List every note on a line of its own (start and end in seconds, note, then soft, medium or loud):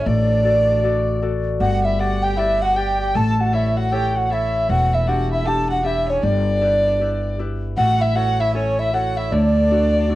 0.00 2.28 E4 soft
0.00 0.44 A4 soft
0.00 0.51 C#5 medium
0.00 0.08 E5 medium
0.06 1.57 A1 medium
0.06 3.14 A3 medium
0.06 1.18 D4 medium
0.06 1.22 D5 loud
0.06 1.18 D5 medium
0.44 0.83 F#4 soft
0.44 0.83 A4 soft
0.44 0.84 D5 medium
0.83 1.22 F#4 medium
0.83 1.22 A4 soft
0.83 1.22 D5 medium
1.22 1.67 F#4 soft
1.22 3.42 A4 soft
1.22 2.00 D5 medium
1.60 3.12 G1 medium
1.60 3.20 G3 medium
1.60 1.83 F#4 medium
1.60 1.86 F#5 loud
1.60 1.83 F#5 medium
1.84 1.99 E4 medium
1.84 2.01 E5 medium
1.99 2.21 F#4 medium
1.99 2.37 G4 soft
1.99 2.38 B4 soft
1.99 2.38 D5 medium
1.99 2.25 F#5 medium
1.99 2.24 F#5 loud
2.22 2.40 G4 medium
2.22 2.39 G5 medium
2.37 2.62 E4 medium
2.37 2.76 G4 medium
2.37 2.76 B4 soft
2.37 2.77 D5 medium
2.37 2.64 E5 loud
2.37 2.61 E5 medium
2.61 2.76 F#4 medium
2.61 2.78 F#5 medium
2.61 2.79 F#5 loud
2.76 5.08 G4 soft
2.76 2.99 G4 medium
2.76 4.81 B4 soft
2.76 3.60 D5 medium
2.76 3.16 G5 medium
2.76 3.00 G5 loud
3.00 3.14 G4 medium
3.00 3.18 G5 loud
3.15 4.66 A1 medium
3.15 6.48 A3 medium
3.15 3.37 A4 medium
3.15 3.55 A5 medium
3.15 3.42 A5 loud
3.39 3.53 F#4 medium
3.39 3.57 F#5 medium
3.53 3.91 E4 medium
3.53 3.79 E4 medium
3.53 3.92 A4 soft
3.53 3.92 C#5 medium
3.53 3.79 E5 medium
3.53 3.78 E5 loud
3.77 3.92 F#4 medium
3.77 3.94 F#5 medium
3.77 3.95 F#5 medium
3.91 4.30 E4 soft
3.91 4.14 G4 medium
3.91 4.30 A4 soft
3.91 4.31 C#5 medium
3.91 4.17 G5 medium
3.91 4.20 G5 loud
4.16 4.29 F#4 medium
4.16 4.24 F#5 medium
4.16 4.34 F#5 medium
4.25 4.32 F#5 medium
4.31 5.07 E4 soft
4.31 4.67 E4 medium
4.31 6.50 A4 soft
4.31 5.13 C#5 medium
4.31 4.71 E5 medium
4.31 4.70 E5 medium
4.69 6.20 E1 medium
4.69 6.28 E3 medium
4.69 4.91 F#4 medium
4.69 4.95 F#5 medium
4.69 4.96 F#5 loud
4.93 5.07 E4 medium
4.93 5.09 E5 medium
4.93 5.10 E5 medium
5.07 5.46 D4 soft
5.07 5.46 E4 soft
5.07 5.30 F#4 medium
5.07 5.47 G4 medium
5.07 5.30 F#5 medium
5.07 5.32 F#5 medium
5.31 5.48 E4 medium
5.31 5.47 E5 medium
5.31 5.49 E5 medium
5.46 5.84 D4 soft
5.46 5.84 E4 soft
5.46 5.84 G4 medium
5.46 5.69 A4 medium
5.46 5.69 A5 medium
5.46 5.70 A5 loud
5.70 5.84 F#4 medium
5.70 5.84 F#5 medium
5.70 5.87 F#5 medium
5.84 8.23 D4 soft
5.84 6.61 E4 soft
5.84 6.07 E4 medium
5.84 6.62 G4 medium
5.84 6.07 E5 medium
5.84 6.11 E5 medium
6.08 6.23 C#4 medium
6.08 6.22 C#5 medium
6.08 6.25 C#5 medium
6.23 7.74 G1 medium
6.23 7.82 G3 medium
6.23 7.35 D4 medium
6.23 7.35 D5 medium
6.23 7.39 D5 loud
6.61 7.00 E4 medium
6.61 7.01 G4 soft
6.61 7.01 B4 medium
7.01 7.39 E4 soft
7.01 7.39 G4 soft
7.01 7.40 B4 medium
7.39 8.15 E4 soft
7.39 9.77 G4 soft
7.39 9.45 B4 soft
7.77 9.29 A1 medium
7.77 10.15 A3 medium
7.77 8.03 F#4 medium
7.77 8.03 F#5 medium
7.77 8.03 F#5 loud
8.01 8.16 E4 medium
8.01 8.17 E5 medium
8.16 8.54 E4 soft
8.16 8.38 F#4 medium
8.16 8.54 A4 soft
8.16 8.55 C#5 medium
8.16 8.42 F#5 loud
8.40 8.57 E4 medium
8.40 8.55 E5 medium
8.40 8.54 E5 medium
8.54 8.78 C#4 medium
8.54 8.93 E4 soft
8.54 8.93 A4 soft
8.54 8.81 C#5 medium
8.54 8.94 C#5 medium
8.54 8.81 C#5 loud
8.79 8.93 E4 medium
8.79 8.95 E5 medium
8.79 8.93 E5 medium
8.93 9.70 E4 soft
8.93 9.15 F#4 medium
8.93 10.15 A4 soft
8.93 9.38 C#5 medium
8.93 9.19 F#5 loud
8.93 9.19 F#5 medium
9.17 9.34 E4 medium
9.17 9.33 E5 medium
9.17 9.27 E5 medium
9.27 9.34 E5 medium
9.32 10.15 D2 medium
9.32 10.15 D3 medium
9.32 10.15 D4 medium
9.32 10.15 D5 loud
9.32 10.15 D5 medium
9.70 10.09 D4 soft
9.70 10.09 E4 soft
9.70 10.10 F#4 medium
10.09 10.15 D4 soft
10.09 10.15 E4 soft
10.09 10.15 F#4 medium